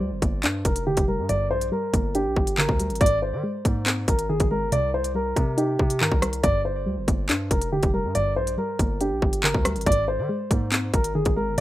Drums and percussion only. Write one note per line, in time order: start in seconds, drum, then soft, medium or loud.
0.22 kick loud
0.22 closed hi-hat medium
0.43 clap loud
0.43 closed hi-hat medium
0.65 kick loud
0.65 closed hi-hat medium
0.76 closed hi-hat medium
0.97 kick loud
0.97 closed hi-hat medium
1.29 closed hi-hat medium
1.61 closed hi-hat medium
1.94 kick loud
1.94 closed hi-hat medium
2.15 closed hi-hat medium
2.36 kick loud
2.47 closed hi-hat medium
2.58 clap loud
2.69 kick loud
2.80 closed hi-hat medium
2.90 closed hi-hat soft
2.95 closed hi-hat medium
3.01 kick loud
3.01 closed hi-hat medium
3.06 closed hi-hat medium
3.65 kick loud
3.65 closed hi-hat medium
3.86 clap loud
3.86 closed hi-hat medium
4.08 kick loud
4.08 closed hi-hat medium
4.19 closed hi-hat medium
4.40 kick loud
4.40 closed hi-hat medium
4.72 closed hi-hat medium
5.04 closed hi-hat medium
5.36 kick loud
5.36 closed hi-hat medium
5.58 closed hi-hat medium
5.79 kick loud
5.90 closed hi-hat medium
6.01 clap loud
6.12 kick loud
6.22 cross-stick loud
6.22 closed hi-hat medium
6.33 closed hi-hat medium
6.44 kick loud
6.44 closed hi-hat medium
7.08 kick loud
7.08 closed hi-hat medium
7.29 clap loud
7.29 closed hi-hat medium
7.51 kick loud
7.51 closed hi-hat medium
7.62 closed hi-hat medium
7.83 kick loud
7.83 closed hi-hat medium
8.15 closed hi-hat medium
8.47 closed hi-hat medium
8.79 kick loud
8.79 closed hi-hat medium
9.01 closed hi-hat medium
9.22 kick loud
9.33 closed hi-hat medium
9.44 clap loud
9.54 kick loud
9.65 cross-stick loud
9.65 closed hi-hat medium
9.76 closed hi-hat soft
9.81 closed hi-hat medium
9.86 kick loud
9.86 closed hi-hat medium
9.92 closed hi-hat medium
10.51 kick loud
10.51 closed hi-hat medium
10.72 clap loud
10.72 closed hi-hat medium
10.94 kick loud
10.94 closed hi-hat medium
11.04 closed hi-hat medium
11.25 kick loud
11.25 closed hi-hat medium